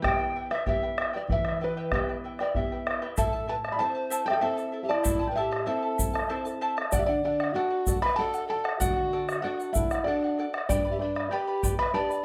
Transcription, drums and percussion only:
0.04 bombo rim, bombo low
0.21 bombo rim
0.51 bombo rim
0.67 bombo rim, bombo low
0.98 bombo rim
1.30 bombo low
1.45 bombo rim
1.61 bombo rim
1.77 bombo rim
1.92 bombo rim, bombo low
2.39 bombo rim
2.55 bombo low
2.71 bombo rim
2.87 bombo rim
3.17 bombo low, shaker
3.65 bombo rim
4.12 shaker
4.28 bombo rim
4.58 bombo rim, shaker
4.91 bombo rim
5.05 bombo low, shaker
5.53 bombo rim
5.99 bombo low, shaker
6.15 bombo rim
6.46 bombo rim, shaker
6.78 bombo rim
6.92 bombo low, shaker
7.40 bombo rim
7.87 bombo low, shaker
8.02 bombo rim
8.34 bombo rim, shaker
8.65 bombo rim
8.81 bombo low, shaker
8.97 bombo rim
9.29 bombo rim, shaker
9.60 shaker
9.75 bombo low, shaker
9.90 bombo rim, shaker
10.22 bombo rim
10.38 bombo rim
10.54 bombo rim
10.70 bombo low, shaker
11.16 bombo rim
11.63 bombo low, shaker
11.79 bombo rim
12.11 bombo rim, shaker

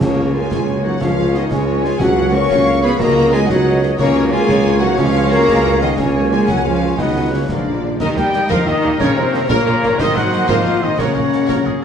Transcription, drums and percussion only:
0.01 concert bass drum, snare, crash
0.51 concert bass drum, snare
1.01 concert bass drum, snare
1.34 snare
1.51 concert bass drum, snare
1.85 snare
2.01 concert bass drum, snare, crash
2.51 concert bass drum, snare
3.00 concert bass drum, snare
3.34 snare
3.50 concert bass drum, snare
3.83 snare
3.99 concert bass drum, snare, crash
4.49 concert bass drum, snare
4.98 concert bass drum, snare
5.32 snare
5.49 concert bass drum, snare
5.82 snare
5.98 concert bass drum, snare, crash
6.48 concert bass drum, snare
6.99 concert bass drum, snare
7.49 concert bass drum, snare
8.00 concert bass drum, snare, crash
8.17 snare
8.33 snare
8.50 concert bass drum, snare
9.00 concert bass drum, snare
9.34 snare
9.50 concert bass drum, snare
9.83 snare
9.99 concert bass drum, snare, crash
10.16 snare
10.33 snare
10.49 concert bass drum, snare
10.99 concert bass drum, snare
11.32 snare
11.49 concert bass drum, snare

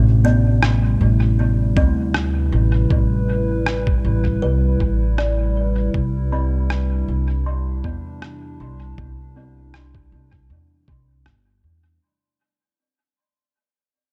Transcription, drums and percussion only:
0.63 cross-stick
1.77 kick
2.14 cross-stick
2.90 kick
3.66 cross-stick
3.87 kick
4.25 kick
4.80 kick
5.18 cross-stick
5.94 kick
6.70 cross-stick
7.84 kick
8.22 cross-stick
8.98 kick
9.74 cross-stick
9.95 kick
10.33 kick
10.88 kick
11.26 cross-stick

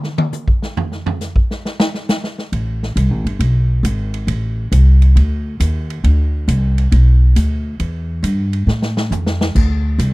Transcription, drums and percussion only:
0.03 snare
0.18 high tom
0.32 hi-hat pedal, high tom
0.48 kick
0.62 snare
0.77 floor tom
0.92 snare
1.06 floor tom
1.21 snare, hi-hat pedal
1.36 kick
1.51 snare
1.65 snare
1.80 snare
1.94 snare
2.09 snare, hi-hat pedal
2.24 snare
2.38 snare
2.53 ride
2.83 snare
2.97 hi-hat pedal, ride
3.26 ride
3.40 ride
3.85 hi-hat pedal, ride
4.14 ride
4.28 ride
4.72 hi-hat pedal, ride
5.02 ride
5.17 ride
5.60 hi-hat pedal, ride
5.90 ride
6.04 ride
6.48 hi-hat pedal, ride
6.78 ride
6.92 ride
7.36 hi-hat pedal, ride
7.80 ride
8.24 hi-hat pedal, ride
8.53 ride
8.68 snare
8.82 snare
8.97 snare
9.11 floor tom, hi-hat pedal
9.26 snare
9.41 snare
9.56 kick, crash
9.99 hi-hat pedal, ride

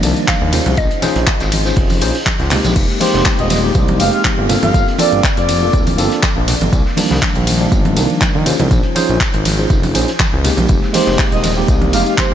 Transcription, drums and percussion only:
0.03 open hi-hat, ride, tambourine
0.16 closed hi-hat
0.28 kick, snare, clap, closed hi-hat, tambourine, high conga
0.52 open hi-hat, ride, tambourine, low conga
0.66 closed hi-hat, high conga, low conga
0.77 kick, closed hi-hat, tambourine
0.91 closed hi-hat
1.02 snare, open hi-hat, ride, tambourine, high conga, low conga
1.16 closed hi-hat
1.27 kick, snare, clap, closed hi-hat, tambourine
1.40 snare, closed hi-hat, tambourine
1.52 closed hi-hat, open hi-hat, ride, high conga
1.65 snare, tambourine
1.76 kick, closed hi-hat, open hi-hat
1.90 open hi-hat, tambourine, high conga
2.02 snare, open hi-hat, ride
2.15 closed hi-hat, open hi-hat
2.26 kick, clap, closed hi-hat, tambourine, high conga
2.40 snare, closed hi-hat
2.51 clap, open hi-hat, ride, low conga
2.64 closed hi-hat, tambourine, high conga
2.76 kick, closed hi-hat, crash, tambourine
2.90 snare
3.00 open hi-hat, ride, high conga
3.14 snare, closed hi-hat
3.25 kick, snare, clap, closed hi-hat, tambourine
3.39 closed hi-hat
3.50 snare, open hi-hat, ride, tambourine, high conga
3.75 kick, closed hi-hat, tambourine
3.88 closed hi-hat, high conga
4.00 open hi-hat, ride, tambourine
4.13 closed hi-hat
4.24 kick, snare, clap, closed hi-hat, tambourine, high conga
4.49 open hi-hat, ride, tambourine, low conga
4.63 closed hi-hat, high conga, low conga
4.74 kick, closed hi-hat, tambourine
4.88 closed hi-hat
4.99 open hi-hat, ride, tambourine, high conga
5.12 closed hi-hat
5.24 kick, snare, clap, closed hi-hat, tambourine
5.37 closed hi-hat
5.49 open hi-hat, ride, tambourine, high conga
5.73 kick, closed hi-hat, tambourine
5.87 open hi-hat, high conga
5.98 open hi-hat, ride, tambourine
6.12 closed hi-hat
6.23 kick, snare, clap, closed hi-hat, tambourine, high conga
6.48 snare, open hi-hat, ride, tambourine, low conga
6.61 closed hi-hat, high conga
6.73 kick, closed hi-hat, tambourine
6.86 snare
6.97 open hi-hat, ride, high conga
7.11 snare
7.22 kick, snare, clap, closed hi-hat, tambourine
7.36 closed hi-hat
7.47 open hi-hat, ride, tambourine, high conga
7.72 kick, closed hi-hat, tambourine
7.85 closed hi-hat, high conga
7.96 open hi-hat, ride, tambourine
8.10 closed hi-hat
8.21 kick, snare, clap, closed hi-hat, tambourine, high conga
8.46 open hi-hat, ride, tambourine, low conga
8.60 closed hi-hat, high conga, low conga
8.71 kick, closed hi-hat, tambourine
8.83 closed hi-hat
8.96 open hi-hat, ride, tambourine, high conga
9.09 closed hi-hat
9.21 kick, snare, clap, closed hi-hat, tambourine
9.34 closed hi-hat
9.45 snare, open hi-hat, ride, tambourine, high conga
9.70 kick, closed hi-hat, tambourine
9.83 open hi-hat, high conga
9.95 open hi-hat, ride, tambourine
10.08 closed hi-hat
10.19 kick, snare, clap, closed hi-hat, tambourine, high conga
10.45 snare, open hi-hat, ride, tambourine, low conga
10.57 closed hi-hat, high conga
10.69 kick, closed hi-hat, tambourine
10.83 snare
10.94 open hi-hat, ride, high conga
11.07 snare, closed hi-hat
11.19 kick, snare, clap, closed hi-hat, tambourine
11.32 closed hi-hat
11.43 snare, open hi-hat, ride, tambourine, high conga
11.68 kick, closed hi-hat, tambourine
11.82 closed hi-hat, high conga
11.93 open hi-hat, ride, tambourine
12.06 closed hi-hat
12.18 kick, snare, clap, closed hi-hat, tambourine, high conga

